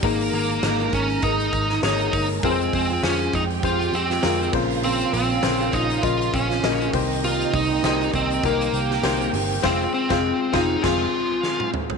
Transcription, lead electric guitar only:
X:1
M:4/4
L:1/16
Q:"Swing 16ths" 1/4=100
K:Fm
V:1 name="Lead electric guitar"
B,2 B,4 D2 E4 E3 z | C2 C2 D2 E2 F2 C4 z2 | C2 C4 E2 F2 D4 z2 | F2 E4 C2 B,6 z2 |
C2 C4 E2 F6 z2 |]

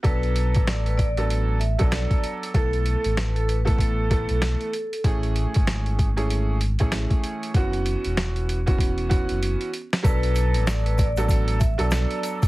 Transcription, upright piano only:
X:1
M:4/4
L:1/16
Q:"Swing 16ths" 1/4=96
K:Bdor
V:1 name="Upright piano"
[F,B,DA]6 z [F,B,DA]3 z [F,B,DA]4- [F,B,DA] | [E,A,B,A]6 z [E,A,B,A]3 [E,A,B,A]4 z2 | [E,A,CG]6 z [E,A,CG]3 z [E,A,CG]4- [E,A,CG] | [E,B,CF]6 z [E,B,CF]3 [E,B,CF]4 z2 |
[F,B,DA]6 z [F,B,DA]3 z [F,B,DA]4- [F,B,DA] |]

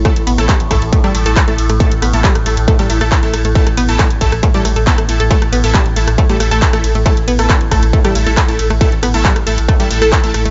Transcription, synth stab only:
X:1
M:4/4
L:1/16
Q:1/4=137
K:C
V:1 name="Synth stab"
[A,EA] z2 [A,EA]2 z [A,EA] z2 [A,EA] [A,EA] [A,EA] z [A,EA]2 z | [A,EA] z2 [A,EA]2 z [A,EA] z2 [A,EA] [A,EA] [A,EA] z [A,EA]2 z | [A,EA] z2 [A,EA]2 z [A,EA] z2 [A,EA] z2 [A,EA] z [A,EA] z | [A,EA] z2 [A,EA]2 z [A,EA] z2 [A,EA] [A,EA] [A,EA] z [A,EA]2 z |
[A,EA] z2 [A,EA]2 z [A,EA] z2 [A,EA] [A,EA] [A,EA] z [A,EA]2 z | [A,EA] z2 [A,EA]2 z [A,EA] z2 [A,EA] [A,EA] [A,EA] z [A,EA]2 z |]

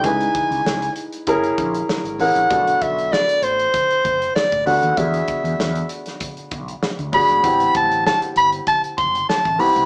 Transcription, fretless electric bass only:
X:1
M:4/4
L:1/16
Q:"Swing 16ths" 1/4=97
K:Bphr
V:1 name="Fretless electric bass" clef=bass
^C,,2 z C,, C,,2 z2 F,,,2 ^A,,,2 z _A,,, =A,,, ^A,,, | B,,,2 B,,,3 z A,,,2 z2 F,,,2 z A,,, D,, _E,, | E,,2 z E,, E,,2 z4 B,,,2 z D,, G,,, ^G,,, | A,,,2 A,,,3 z G,,,2 z2 F,,,2 z A,,, B,,, C,, |]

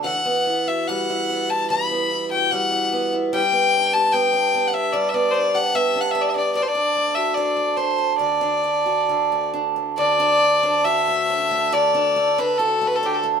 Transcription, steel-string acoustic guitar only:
X:1
M:4/4
L:1/16
Q:1/4=73
K:D
V:1 name="Steel-string acoustic guitar"
E, B, E F G, E B, E E, B, E F G, E B, E | G, B, D G B, D B, D G, B, D G B, D B, D | D,, D A, F D, A, D A, D,, D A, F D, A, D A, | D,, D A, D F A, D A, D,, D A, D F A, D A, |]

